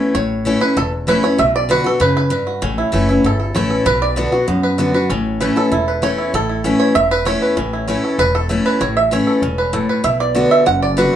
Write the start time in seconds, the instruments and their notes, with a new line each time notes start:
Already playing: steel-string acoustic guitar E2 E3 A3 C#4 E4
0.15 upright bass A1, steel-string acoustic guitar A2, five-string banjo C#5
0.45 steel-string acoustic guitar E3 A3 C#4 E4
0.60 steel-string acoustic guitar C#4 E4, five-string banjo B4
0.77 upright bass E1, steel-string acoustic guitar E2, five-string banjo A4
1.07 steel-string acoustic guitar E3 A3 C#4 E4, five-string banjo B4
1.23 steel-string acoustic guitar C#4 E4, five-string banjo C#5
1.38 upright bass B1, steel-string acoustic guitar B2, five-string banjo E5
1.56 five-string banjo D5
1.69 steel-string acoustic guitar D3 B3 D4 F#4, five-string banjo B4
1.84 steel-string acoustic guitar D4 F#4, five-string banjo A4
2.00 upright bass F#2, steel-string acoustic guitar C#3, five-string banjo B4
2.17 five-string banjo B4
2.30 steel-string acoustic guitar G2, five-string banjo B4
2.47 five-string banjo F#4
2.62 upright bass A1, steel-string acoustic guitar A2, five-string banjo C#4
2.78 five-string banjo E4
2.92 upright bass F#1, steel-string acoustic guitar E3 A3 C#4 E4, five-string banjo C#4
3.09 steel-string acoustic guitar C#4 E4, five-string banjo E4
3.24 upright bass G1, steel-string acoustic guitar E2, five-string banjo A4
3.40 five-string banjo A4
3.55 upright bass A1, steel-string acoustic guitar E3 A3 C#4 E4, five-string banjo C#5
3.70 five-string banjo A4
3.86 upright bass B1, steel-string acoustic guitar B2, five-string banjo B4
4.02 five-string banjo D5
4.16 steel-string acoustic guitar D3 B3 D4 F#4, five-string banjo B3
4.32 steel-string acoustic guitar D4 F#4, five-string banjo F#4
4.48 steel-string acoustic guitar F#2, upright bass F#2, five-string banjo B3
4.63 five-string banjo B4
4.78 steel-string acoustic guitar D3 B3 D4 F#4, five-string banjo F#4
4.94 steel-string acoustic guitar D4 F#4, five-string banjo B4
5.10 upright bass A1, steel-string acoustic guitar A2, five-string banjo C#4
5.40 steel-string acoustic guitar E3 A3 C#4 E4, five-string banjo B4
5.56 steel-string acoustic guitar C#4 E4, five-string banjo A4
5.72 upright bass E1, steel-string acoustic guitar E2, five-string banjo E4
5.88 five-string banjo B4
6.02 steel-string acoustic guitar E3 A3 C#4 E4, five-string banjo C#5
6.18 five-string banjo E4
6.34 upright bass A1, steel-string acoustic guitar A2, five-string banjo A4
6.49 five-string banjo E4
6.64 steel-string acoustic guitar E3 A3 C#4 E4, five-string banjo C#4
6.80 five-string banjo C#5
6.95 upright bass E1, steel-string acoustic guitar E2, five-string banjo E5
7.11 five-string banjo B4
7.25 steel-string acoustic guitar E3 A3 C#4 E4, five-string banjo C#5
7.42 five-string banjo B4
7.57 upright bass A1, steel-string acoustic guitar A2, five-string banjo C#4
7.73 five-string banjo E4
7.88 steel-string acoustic guitar E3 A3 C#4 E4, five-string banjo C#4
8.04 five-string banjo A4
8.18 upright bass E1, steel-string acoustic guitar E2, five-string banjo B4
8.35 five-string banjo A4
8.49 steel-string acoustic guitar E3 A3 C#4 E4, five-string banjo A4
8.66 five-string banjo B4
8.81 upright bass A1, steel-string acoustic guitar A2, five-string banjo C#5
8.97 five-string banjo E5
9.11 steel-string acoustic guitar E3 A3 C#4 E4, five-string banjo C#5
9.27 five-string banjo A4
9.42 upright bass E1, steel-string acoustic guitar G2, five-string banjo C#4
9.58 five-string banjo B4
9.73 steel-string acoustic guitar A2, five-string banjo A4
9.89 five-string banjo B4
10.04 upright bass B1, steel-string acoustic guitar B2, five-string banjo E5
10.20 five-string banjo D5
10.35 steel-string acoustic guitar D3 B3 D4 F#4, five-string banjo F#4
10.51 five-string banjo E5
10.66 upright bass F#1, steel-string acoustic guitar F#2, five-string banjo F#5
10.82 five-string banjo D5
10.97 steel-string acoustic guitar D3 B3 D4 F#4, five-string banjo B4